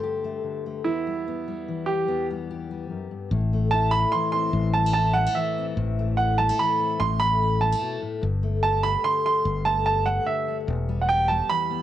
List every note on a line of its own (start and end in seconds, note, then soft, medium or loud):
0.00 0.83 G2 medium
0.00 0.42 D3 soft
0.00 0.23 A3 soft
0.00 2.50 G4 medium
0.00 0.93 C5 medium
0.24 0.65 A3 soft
0.44 0.85 D3 soft
0.66 0.84 A3 soft
0.84 2.07 E2 medium
0.84 1.27 B3 soft
0.84 1.91 E4 medium
1.07 1.46 G3 soft
1.27 2.07 B3 soft
1.48 1.88 G3 soft
1.68 2.93 E3 soft
1.86 2.29 G3 soft
1.86 2.25 G4 medium
2.08 2.90 E2 medium
2.08 3.31 B3 soft
2.31 2.70 G3 soft
2.51 3.30 G4 soft
2.71 3.32 G3 soft
2.90 3.11 F#2 soft
3.11 3.32 G2 soft
3.31 4.04 A1 medium
3.31 4.53 A2 medium
3.53 3.94 A3 soft
3.71 4.96 E4 medium
3.71 3.93 A5 medium
3.91 4.75 A3 medium
3.91 4.13 B5 loud
4.12 5.35 E3 medium
4.12 4.31 C6 medium
4.32 5.58 C4 medium
4.32 4.75 C6 medium
4.53 5.26 A1 medium
4.53 5.77 A2 medium
4.74 4.86 G3 soft
4.74 4.92 A5 medium
4.86 5.15 A3 soft
4.94 6.19 E4 medium
4.94 5.16 A5 medium
5.14 5.27 G3 medium
5.14 5.36 F#5 medium
5.27 5.77 A3 medium
5.35 6.60 E3 medium
5.35 5.64 E5 medium
5.58 6.79 C4 medium
5.77 6.50 A1 medium
5.77 7.00 A2 medium
5.99 6.39 A3 medium
6.17 7.41 E4 medium
6.17 6.39 F#5 medium
6.38 6.49 G3 medium
6.38 6.59 A5 medium
6.49 7.00 A3 medium
6.59 6.98 E3 medium
6.59 7.01 B5 medium
6.80 6.97 C4 soft
7.00 7.73 A1 medium
7.00 7.80 A2 medium
7.00 7.21 C6 medium
7.20 7.62 A3 soft
7.20 7.62 B5 loud
7.43 8.23 E4 medium
7.61 7.72 G3 medium
7.61 7.99 A5 medium
7.72 8.23 A3 soft
7.81 8.01 B2 medium
8.02 8.22 A2 medium
8.21 8.95 G1 medium
8.21 9.42 G2 medium
8.43 8.82 A3 soft
8.63 9.68 G4 medium
8.63 8.84 A5 medium
8.83 9.42 A3 medium
8.83 9.04 B5 medium
9.04 10.25 D3 medium
9.04 9.24 C6 medium
9.26 9.43 D4 soft
9.26 9.67 C6 medium
9.45 10.18 G1 medium
9.45 10.65 G2 medium
9.65 10.05 A3 soft
9.65 9.84 A5 medium
9.86 11.09 G4 medium
9.86 10.07 A5 medium
10.06 10.65 A3 medium
10.06 10.25 F#5 medium
10.26 10.67 D3 medium
10.26 10.55 E5 medium
10.48 10.66 D4 soft
10.67 11.40 E1 medium
10.67 11.82 E2 medium
10.89 11.29 G3 medium
11.01 11.07 F#5 medium
11.09 11.82 G4 medium
11.09 11.30 G5 medium
11.28 11.82 G3 medium
11.28 11.50 A5 medium
11.49 11.82 E3 medium
11.49 11.82 B5 loud
11.70 11.82 B3 medium